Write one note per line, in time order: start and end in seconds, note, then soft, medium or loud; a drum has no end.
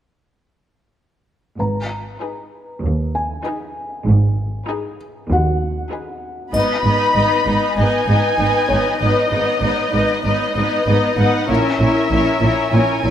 1.59 2.08 G#1 soft
1.59 2.08 G#2 soft
1.59 3.41 B4 soft
1.59 3.41 A#5 soft
2.21 2.67 D#4 soft
2.21 2.67 G#4 soft
2.21 2.68 B4 soft
2.83 3.32 D#2 soft
3.15 4.96 G#5 soft
3.45 3.91 D#4 soft
3.45 3.91 G#4 soft
3.45 3.91 B4 soft
4.06 4.56 G#1 medium
4.06 4.55 G#2 medium
4.67 5.15 D#4 soft
4.67 5.14 G#4 soft
4.67 5.14 B4 soft
5.29 5.79 D#2 soft
5.29 6.51 F#4 soft
5.29 6.51 F#5 soft
5.91 6.38 D#4 soft
5.91 6.38 G#4 soft
5.91 6.38 B4 soft
6.53 6.62 G#1 soft
6.53 6.61 G#2 soft
6.53 6.84 B3 soft
6.53 6.84 D#4 soft
6.53 6.84 B4 soft
6.53 8.35 D#5 soft
6.53 6.84 D#5 soft
6.53 7.73 B5 medium
6.53 triangle soft
6.84 6.92 G#1 soft
6.84 6.92 G#2 soft
6.84 7.15 B3 soft
6.84 7.15 D#4 soft
6.84 7.15 B4 soft
6.84 7.15 D#5 soft
7.15 7.23 G#1 soft
7.15 7.23 G#2 soft
7.15 7.45 B3 soft
7.15 7.46 D#4 soft
7.15 7.45 B4 soft
7.15 7.45 D#5 soft
7.46 7.54 G#1 soft
7.46 7.54 G#2 soft
7.46 7.77 B3 soft
7.46 7.77 D#4 soft
7.46 7.77 B4 soft
7.46 7.77 D#5 soft
7.77 7.85 G#1 soft
7.77 7.86 G#2 soft
7.77 8.08 B3 soft
7.77 8.08 D#4 soft
7.77 8.07 B4 soft
7.77 8.07 D#5 soft
7.77 9.01 G#5 medium
8.08 8.16 G#1 soft
8.08 8.16 G#2 soft
8.08 8.38 B3 soft
8.08 8.38 D#4 soft
8.08 8.39 B4 soft
8.08 8.39 D#5 soft
8.39 8.48 G#1 soft
8.39 8.47 G#2 soft
8.39 8.68 B3 soft
8.39 8.69 D#4 soft
8.39 8.69 B4 soft
8.39 8.68 D#5 soft
8.68 8.78 G#1 soft
8.68 8.78 G#2 soft
8.68 9.00 B3 soft
8.68 9.01 D#4 soft
8.68 9.00 B4 soft
8.68 10.51 C#5 soft
8.68 9.00 D#5 soft
9.01 9.10 G#1 soft
9.01 9.10 G#2 soft
9.01 9.31 B3 soft
9.01 9.31 D#4 soft
9.01 9.30 B4 soft
9.01 9.31 D#5 soft
9.01 10.23 D#5 medium
9.32 9.41 G#1 soft
9.32 9.40 G#2 soft
9.32 9.61 B3 soft
9.32 9.62 D#4 soft
9.32 9.62 B4 soft
9.32 9.62 D#5 soft
9.63 9.71 G#1 soft
9.63 9.71 G#2 soft
9.63 9.92 B3 soft
9.63 9.92 D#4 soft
9.63 9.92 B4 soft
9.63 9.92 D#5 soft
9.93 10.02 G#1 soft
9.93 10.02 G#2 soft
9.93 10.23 B3 soft
9.93 10.23 D#4 soft
9.93 10.23 B4 soft
9.93 10.23 D#5 soft
10.24 10.33 G#1 soft
10.24 10.33 G#2 soft
10.24 10.54 B3 soft
10.24 10.54 D#4 soft
10.24 10.55 B4 soft
10.24 10.55 D#5 soft
10.24 11.16 D#5 soft
10.56 10.64 G#1 soft
10.56 10.64 G#2 soft
10.56 10.86 B3 soft
10.56 10.86 D#4 soft
10.56 10.86 B4 soft
10.56 10.86 D#5 soft
10.87 10.95 G#1 soft
10.87 10.95 G#2 soft
10.87 11.17 B3 soft
10.87 11.18 D#4 soft
10.87 11.17 B4 soft
10.87 11.18 D#5 soft
11.18 11.26 G#1 soft
11.18 11.26 G#2 soft
11.18 11.49 B3 soft
11.18 11.49 D#4 soft
11.18 11.48 B4 soft
11.18 11.49 D#5 soft
11.18 11.49 F#5 soft
11.49 11.57 A#1 soft
11.49 11.57 A#2 soft
11.49 11.78 C#4 soft
11.49 11.79 E4 soft
11.49 11.79 A#4 soft
11.49 11.79 C#5 soft
11.49 12.73 E5 soft
11.79 11.87 A#1 soft
11.79 11.88 A#2 soft
11.79 12.10 C#4 soft
11.79 12.10 E4 soft
11.79 12.10 A#4 soft
11.79 12.11 C#5 soft
12.11 12.19 A#1 soft
12.11 12.19 A#2 soft
12.11 12.41 C#4 soft
12.11 12.41 E4 soft
12.11 12.41 A#4 soft
12.11 12.41 C#5 soft
12.42 12.50 A#1 soft
12.42 12.50 A#2 soft
12.42 12.71 C#4 soft
12.42 12.72 E4 soft
12.42 12.71 A#4 soft
12.42 12.71 C#5 soft
12.72 12.81 A#1 soft
12.72 12.81 A#2 soft
12.72 13.03 C#4 soft
12.72 13.02 E4 soft
12.72 13.02 A#4 soft
12.72 13.02 C#5 soft
12.72 13.10 G#5 medium
13.03 13.10 A#1 soft
13.03 13.10 A#2 soft
13.03 13.10 C#4 soft
13.03 13.10 E4 soft
13.03 13.10 A#4 soft
13.03 13.10 C#5 soft